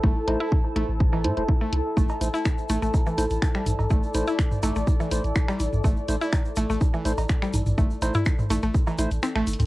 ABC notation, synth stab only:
X:1
M:4/4
L:1/16
Q:1/4=124
K:Am
V:1 name="Synth stab"
z2 [A,Ec] z6 z [A,Ec] [A,Ec] z4 | z2 [A,Ec] z6 z [A,Ec] z4 z | z2 [A,Ec] z6 z [A,Ec] z4 z | z2 [A,Ec] z6 z [A,Ec] z4 z |
z2 [A,Ec] z6 z [A,Ec] z4 z |]